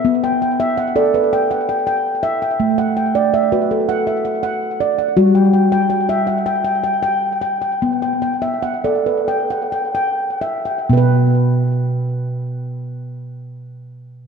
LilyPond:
<<
  \new Staff \with { instrumentName = "Handpan" } { \time 7/8 \key b \minor \tempo 4 = 80 << { e''16 g''16 g''8 fis''16 d''16 b'8 fis''16 g''8. r16 g''16~ | g''16 fis''16 g''8 e''16 b'16 a'8 e''16 fis''8. r16 fis''16~ | fis''16 g''16 g''8 g''16 g''16 fis''8 g''16 g''8. r16 g''16~ | g''16 g''16 g''8 fis''16 d''16 b'8 fis''16 g''8. r16 g''16~ |
g''16 r2. r16 | } \\ { b8 r16 e''8 a'8 g''8 r16 g''8 e''8 | a8 r16 d''8 fis'8 fis''8 r16 fis''8 d''8 | fis'8 r16 g''8 e''8 g''8 r16 g''8 g''8 | b8 r16 e''8 a'8 g''8 r16 g''8 e''8 |
r2. r8 | } >> }
  \new Staff \with { instrumentName = "Handpan" } { \time 7/8 \key b \minor r2. r8 | r2. r8 | g2.~ g8 | r2. r8 |
<b, b b'>2.~ <b, b b'>8 | }
>>